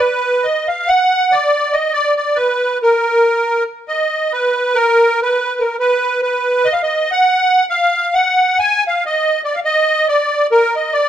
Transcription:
0, 0, Header, 1, 2, 480
1, 0, Start_track
1, 0, Tempo, 425230
1, 26, Time_signature, 9, 3, 24, 8
1, 12517, End_track
2, 0, Start_track
2, 0, Title_t, "Accordion"
2, 0, Program_c, 0, 21
2, 0, Note_on_c, 0, 71, 102
2, 484, Note_on_c, 0, 75, 92
2, 521, Note_off_c, 0, 71, 0
2, 767, Note_off_c, 0, 75, 0
2, 767, Note_on_c, 0, 77, 85
2, 991, Note_on_c, 0, 78, 127
2, 1011, Note_off_c, 0, 77, 0
2, 1488, Note_on_c, 0, 74, 104
2, 1523, Note_off_c, 0, 78, 0
2, 1949, Note_on_c, 0, 75, 91
2, 1979, Note_off_c, 0, 74, 0
2, 2178, Note_on_c, 0, 74, 105
2, 2179, Note_off_c, 0, 75, 0
2, 2423, Note_off_c, 0, 74, 0
2, 2440, Note_on_c, 0, 74, 81
2, 2663, Note_on_c, 0, 71, 94
2, 2680, Note_off_c, 0, 74, 0
2, 3140, Note_off_c, 0, 71, 0
2, 3190, Note_on_c, 0, 70, 99
2, 4103, Note_off_c, 0, 70, 0
2, 4382, Note_on_c, 0, 75, 94
2, 4881, Note_on_c, 0, 71, 102
2, 4882, Note_off_c, 0, 75, 0
2, 5364, Note_on_c, 0, 70, 123
2, 5382, Note_off_c, 0, 71, 0
2, 5873, Note_off_c, 0, 70, 0
2, 5897, Note_on_c, 0, 71, 105
2, 6318, Note_on_c, 0, 70, 75
2, 6346, Note_off_c, 0, 71, 0
2, 6506, Note_off_c, 0, 70, 0
2, 6539, Note_on_c, 0, 71, 107
2, 7009, Note_off_c, 0, 71, 0
2, 7026, Note_on_c, 0, 71, 93
2, 7505, Note_on_c, 0, 75, 122
2, 7535, Note_off_c, 0, 71, 0
2, 7595, Note_on_c, 0, 77, 99
2, 7608, Note_off_c, 0, 75, 0
2, 7697, Note_off_c, 0, 77, 0
2, 7706, Note_on_c, 0, 75, 94
2, 8024, Note_off_c, 0, 75, 0
2, 8032, Note_on_c, 0, 78, 118
2, 8640, Note_off_c, 0, 78, 0
2, 8687, Note_on_c, 0, 77, 111
2, 9191, Note_on_c, 0, 78, 108
2, 9194, Note_off_c, 0, 77, 0
2, 9694, Note_off_c, 0, 78, 0
2, 9699, Note_on_c, 0, 80, 127
2, 9976, Note_off_c, 0, 80, 0
2, 10016, Note_on_c, 0, 77, 92
2, 10205, Note_off_c, 0, 77, 0
2, 10228, Note_on_c, 0, 75, 108
2, 10624, Note_off_c, 0, 75, 0
2, 10662, Note_on_c, 0, 74, 89
2, 10774, Note_on_c, 0, 77, 83
2, 10784, Note_off_c, 0, 74, 0
2, 10836, Note_off_c, 0, 77, 0
2, 10891, Note_on_c, 0, 75, 122
2, 11372, Note_off_c, 0, 75, 0
2, 11381, Note_on_c, 0, 74, 98
2, 11819, Note_off_c, 0, 74, 0
2, 11872, Note_on_c, 0, 70, 117
2, 12139, Note_off_c, 0, 70, 0
2, 12142, Note_on_c, 0, 75, 84
2, 12333, Note_on_c, 0, 74, 98
2, 12345, Note_off_c, 0, 75, 0
2, 12517, Note_off_c, 0, 74, 0
2, 12517, End_track
0, 0, End_of_file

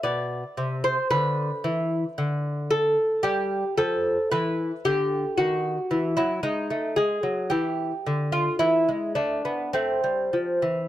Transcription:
0, 0, Header, 1, 2, 480
1, 0, Start_track
1, 0, Tempo, 1067616
1, 502, Time_signature, 4, 2, 24, 8
1, 3382, Tempo, 1111111
1, 4342, Tempo, 1169591
1, 4809, End_track
2, 0, Start_track
2, 0, Title_t, "Lute"
2, 0, Program_c, 0, 24
2, 15, Note_on_c, 0, 74, 79
2, 19, Note_on_c, 0, 47, 60
2, 192, Note_off_c, 0, 47, 0
2, 258, Note_on_c, 0, 48, 59
2, 363, Note_off_c, 0, 74, 0
2, 377, Note_on_c, 0, 72, 85
2, 433, Note_off_c, 0, 48, 0
2, 495, Note_off_c, 0, 72, 0
2, 497, Note_on_c, 0, 50, 64
2, 497, Note_on_c, 0, 71, 89
2, 674, Note_off_c, 0, 50, 0
2, 738, Note_on_c, 0, 52, 63
2, 913, Note_off_c, 0, 52, 0
2, 980, Note_on_c, 0, 50, 58
2, 1202, Note_off_c, 0, 71, 0
2, 1216, Note_on_c, 0, 69, 87
2, 1325, Note_off_c, 0, 50, 0
2, 1449, Note_off_c, 0, 69, 0
2, 1452, Note_on_c, 0, 67, 85
2, 1457, Note_on_c, 0, 55, 65
2, 1632, Note_off_c, 0, 55, 0
2, 1688, Note_off_c, 0, 67, 0
2, 1697, Note_on_c, 0, 69, 81
2, 1700, Note_on_c, 0, 53, 61
2, 1874, Note_off_c, 0, 53, 0
2, 1930, Note_off_c, 0, 69, 0
2, 1940, Note_on_c, 0, 71, 89
2, 1943, Note_on_c, 0, 52, 64
2, 2116, Note_off_c, 0, 52, 0
2, 2172, Note_off_c, 0, 71, 0
2, 2181, Note_on_c, 0, 50, 55
2, 2181, Note_on_c, 0, 67, 80
2, 2354, Note_off_c, 0, 50, 0
2, 2412, Note_off_c, 0, 67, 0
2, 2417, Note_on_c, 0, 66, 71
2, 2421, Note_on_c, 0, 51, 59
2, 2593, Note_off_c, 0, 51, 0
2, 2656, Note_on_c, 0, 52, 61
2, 2763, Note_off_c, 0, 66, 0
2, 2772, Note_off_c, 0, 52, 0
2, 2773, Note_on_c, 0, 64, 76
2, 2776, Note_on_c, 0, 54, 62
2, 2889, Note_off_c, 0, 54, 0
2, 2889, Note_off_c, 0, 64, 0
2, 2891, Note_on_c, 0, 56, 55
2, 2891, Note_on_c, 0, 63, 74
2, 3010, Note_off_c, 0, 56, 0
2, 3014, Note_on_c, 0, 57, 57
2, 3126, Note_off_c, 0, 63, 0
2, 3130, Note_on_c, 0, 68, 85
2, 3132, Note_off_c, 0, 57, 0
2, 3136, Note_on_c, 0, 56, 58
2, 3249, Note_off_c, 0, 56, 0
2, 3251, Note_on_c, 0, 54, 53
2, 3370, Note_off_c, 0, 68, 0
2, 3371, Note_on_c, 0, 67, 68
2, 3373, Note_off_c, 0, 54, 0
2, 3377, Note_on_c, 0, 52, 59
2, 3550, Note_off_c, 0, 52, 0
2, 3616, Note_on_c, 0, 50, 53
2, 3719, Note_off_c, 0, 67, 0
2, 3728, Note_on_c, 0, 65, 73
2, 3789, Note_off_c, 0, 50, 0
2, 3842, Note_off_c, 0, 65, 0
2, 3844, Note_on_c, 0, 64, 73
2, 3849, Note_on_c, 0, 52, 56
2, 3967, Note_off_c, 0, 52, 0
2, 3971, Note_on_c, 0, 56, 54
2, 4081, Note_off_c, 0, 64, 0
2, 4086, Note_on_c, 0, 62, 69
2, 4089, Note_off_c, 0, 56, 0
2, 4089, Note_on_c, 0, 57, 52
2, 4210, Note_off_c, 0, 57, 0
2, 4214, Note_on_c, 0, 59, 49
2, 4329, Note_off_c, 0, 62, 0
2, 4335, Note_off_c, 0, 59, 0
2, 4337, Note_on_c, 0, 60, 67
2, 4342, Note_on_c, 0, 57, 55
2, 4457, Note_off_c, 0, 57, 0
2, 4462, Note_on_c, 0, 55, 48
2, 4577, Note_off_c, 0, 55, 0
2, 4583, Note_on_c, 0, 53, 49
2, 4698, Note_off_c, 0, 53, 0
2, 4702, Note_on_c, 0, 52, 50
2, 4809, Note_off_c, 0, 52, 0
2, 4809, Note_off_c, 0, 60, 0
2, 4809, End_track
0, 0, End_of_file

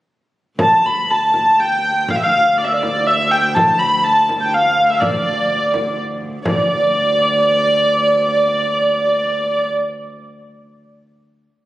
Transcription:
0, 0, Header, 1, 4, 480
1, 0, Start_track
1, 0, Tempo, 497100
1, 565, Time_signature, 3, 2, 24, 8
1, 3442, Tempo, 484262
1, 5842, Tempo, 468384
1, 8242, Tempo, 453172
1, 11766, End_track
2, 0, Start_track
2, 0, Title_t, "Hurdy-gurdy"
2, 0, Program_c, 0, 110
2, 586, Note_on_c, 0, 81, 93
2, 833, Note_off_c, 0, 81, 0
2, 833, Note_on_c, 0, 83, 93
2, 1068, Note_off_c, 0, 83, 0
2, 1068, Note_on_c, 0, 81, 88
2, 1544, Note_off_c, 0, 81, 0
2, 1544, Note_on_c, 0, 79, 87
2, 2032, Note_off_c, 0, 79, 0
2, 2032, Note_on_c, 0, 77, 88
2, 2088, Note_off_c, 0, 77, 0
2, 2088, Note_on_c, 0, 76, 75
2, 2159, Note_off_c, 0, 76, 0
2, 2159, Note_on_c, 0, 77, 84
2, 2490, Note_on_c, 0, 74, 78
2, 2496, Note_off_c, 0, 77, 0
2, 2554, Note_off_c, 0, 74, 0
2, 2554, Note_on_c, 0, 76, 65
2, 2630, Note_off_c, 0, 76, 0
2, 2630, Note_on_c, 0, 74, 83
2, 2965, Note_on_c, 0, 76, 87
2, 2970, Note_off_c, 0, 74, 0
2, 3200, Note_off_c, 0, 76, 0
2, 3200, Note_on_c, 0, 79, 83
2, 3421, Note_on_c, 0, 81, 94
2, 3439, Note_off_c, 0, 79, 0
2, 3667, Note_on_c, 0, 83, 86
2, 3674, Note_off_c, 0, 81, 0
2, 3909, Note_on_c, 0, 81, 89
2, 3918, Note_off_c, 0, 83, 0
2, 4250, Note_off_c, 0, 81, 0
2, 4250, Note_on_c, 0, 81, 60
2, 4278, Note_on_c, 0, 79, 81
2, 4284, Note_off_c, 0, 81, 0
2, 4412, Note_off_c, 0, 79, 0
2, 4412, Note_on_c, 0, 77, 77
2, 4770, Note_off_c, 0, 77, 0
2, 4770, Note_on_c, 0, 76, 71
2, 4794, Note_on_c, 0, 77, 61
2, 4818, Note_off_c, 0, 76, 0
2, 4818, Note_on_c, 0, 76, 66
2, 4827, Note_off_c, 0, 77, 0
2, 4875, Note_on_c, 0, 74, 80
2, 4884, Note_off_c, 0, 76, 0
2, 5834, Note_off_c, 0, 74, 0
2, 6324, Note_on_c, 0, 74, 87
2, 9710, Note_off_c, 0, 74, 0
2, 11766, End_track
3, 0, Start_track
3, 0, Title_t, "Viola da gamba"
3, 0, Program_c, 1, 42
3, 571, Note_on_c, 1, 38, 62
3, 6326, Note_off_c, 1, 38, 0
3, 6332, Note_on_c, 1, 38, 64
3, 9719, Note_off_c, 1, 38, 0
3, 11766, End_track
4, 0, Start_track
4, 0, Title_t, "Frame drum"
4, 568, Note_on_c, 9, 64, 73
4, 665, Note_off_c, 9, 64, 0
4, 1292, Note_on_c, 9, 64, 55
4, 1388, Note_off_c, 9, 64, 0
4, 2013, Note_on_c, 9, 64, 71
4, 2109, Note_off_c, 9, 64, 0
4, 2732, Note_on_c, 9, 64, 59
4, 2829, Note_off_c, 9, 64, 0
4, 3440, Note_on_c, 9, 64, 83
4, 3539, Note_off_c, 9, 64, 0
4, 4162, Note_on_c, 9, 64, 58
4, 4261, Note_off_c, 9, 64, 0
4, 4882, Note_on_c, 9, 64, 80
4, 4981, Note_off_c, 9, 64, 0
4, 5119, Note_on_c, 9, 64, 23
4, 5218, Note_off_c, 9, 64, 0
4, 5597, Note_on_c, 9, 64, 58
4, 5696, Note_off_c, 9, 64, 0
4, 6080, Note_on_c, 9, 64, 25
4, 6183, Note_off_c, 9, 64, 0
4, 6322, Note_on_c, 9, 64, 78
4, 6425, Note_off_c, 9, 64, 0
4, 11766, End_track
0, 0, End_of_file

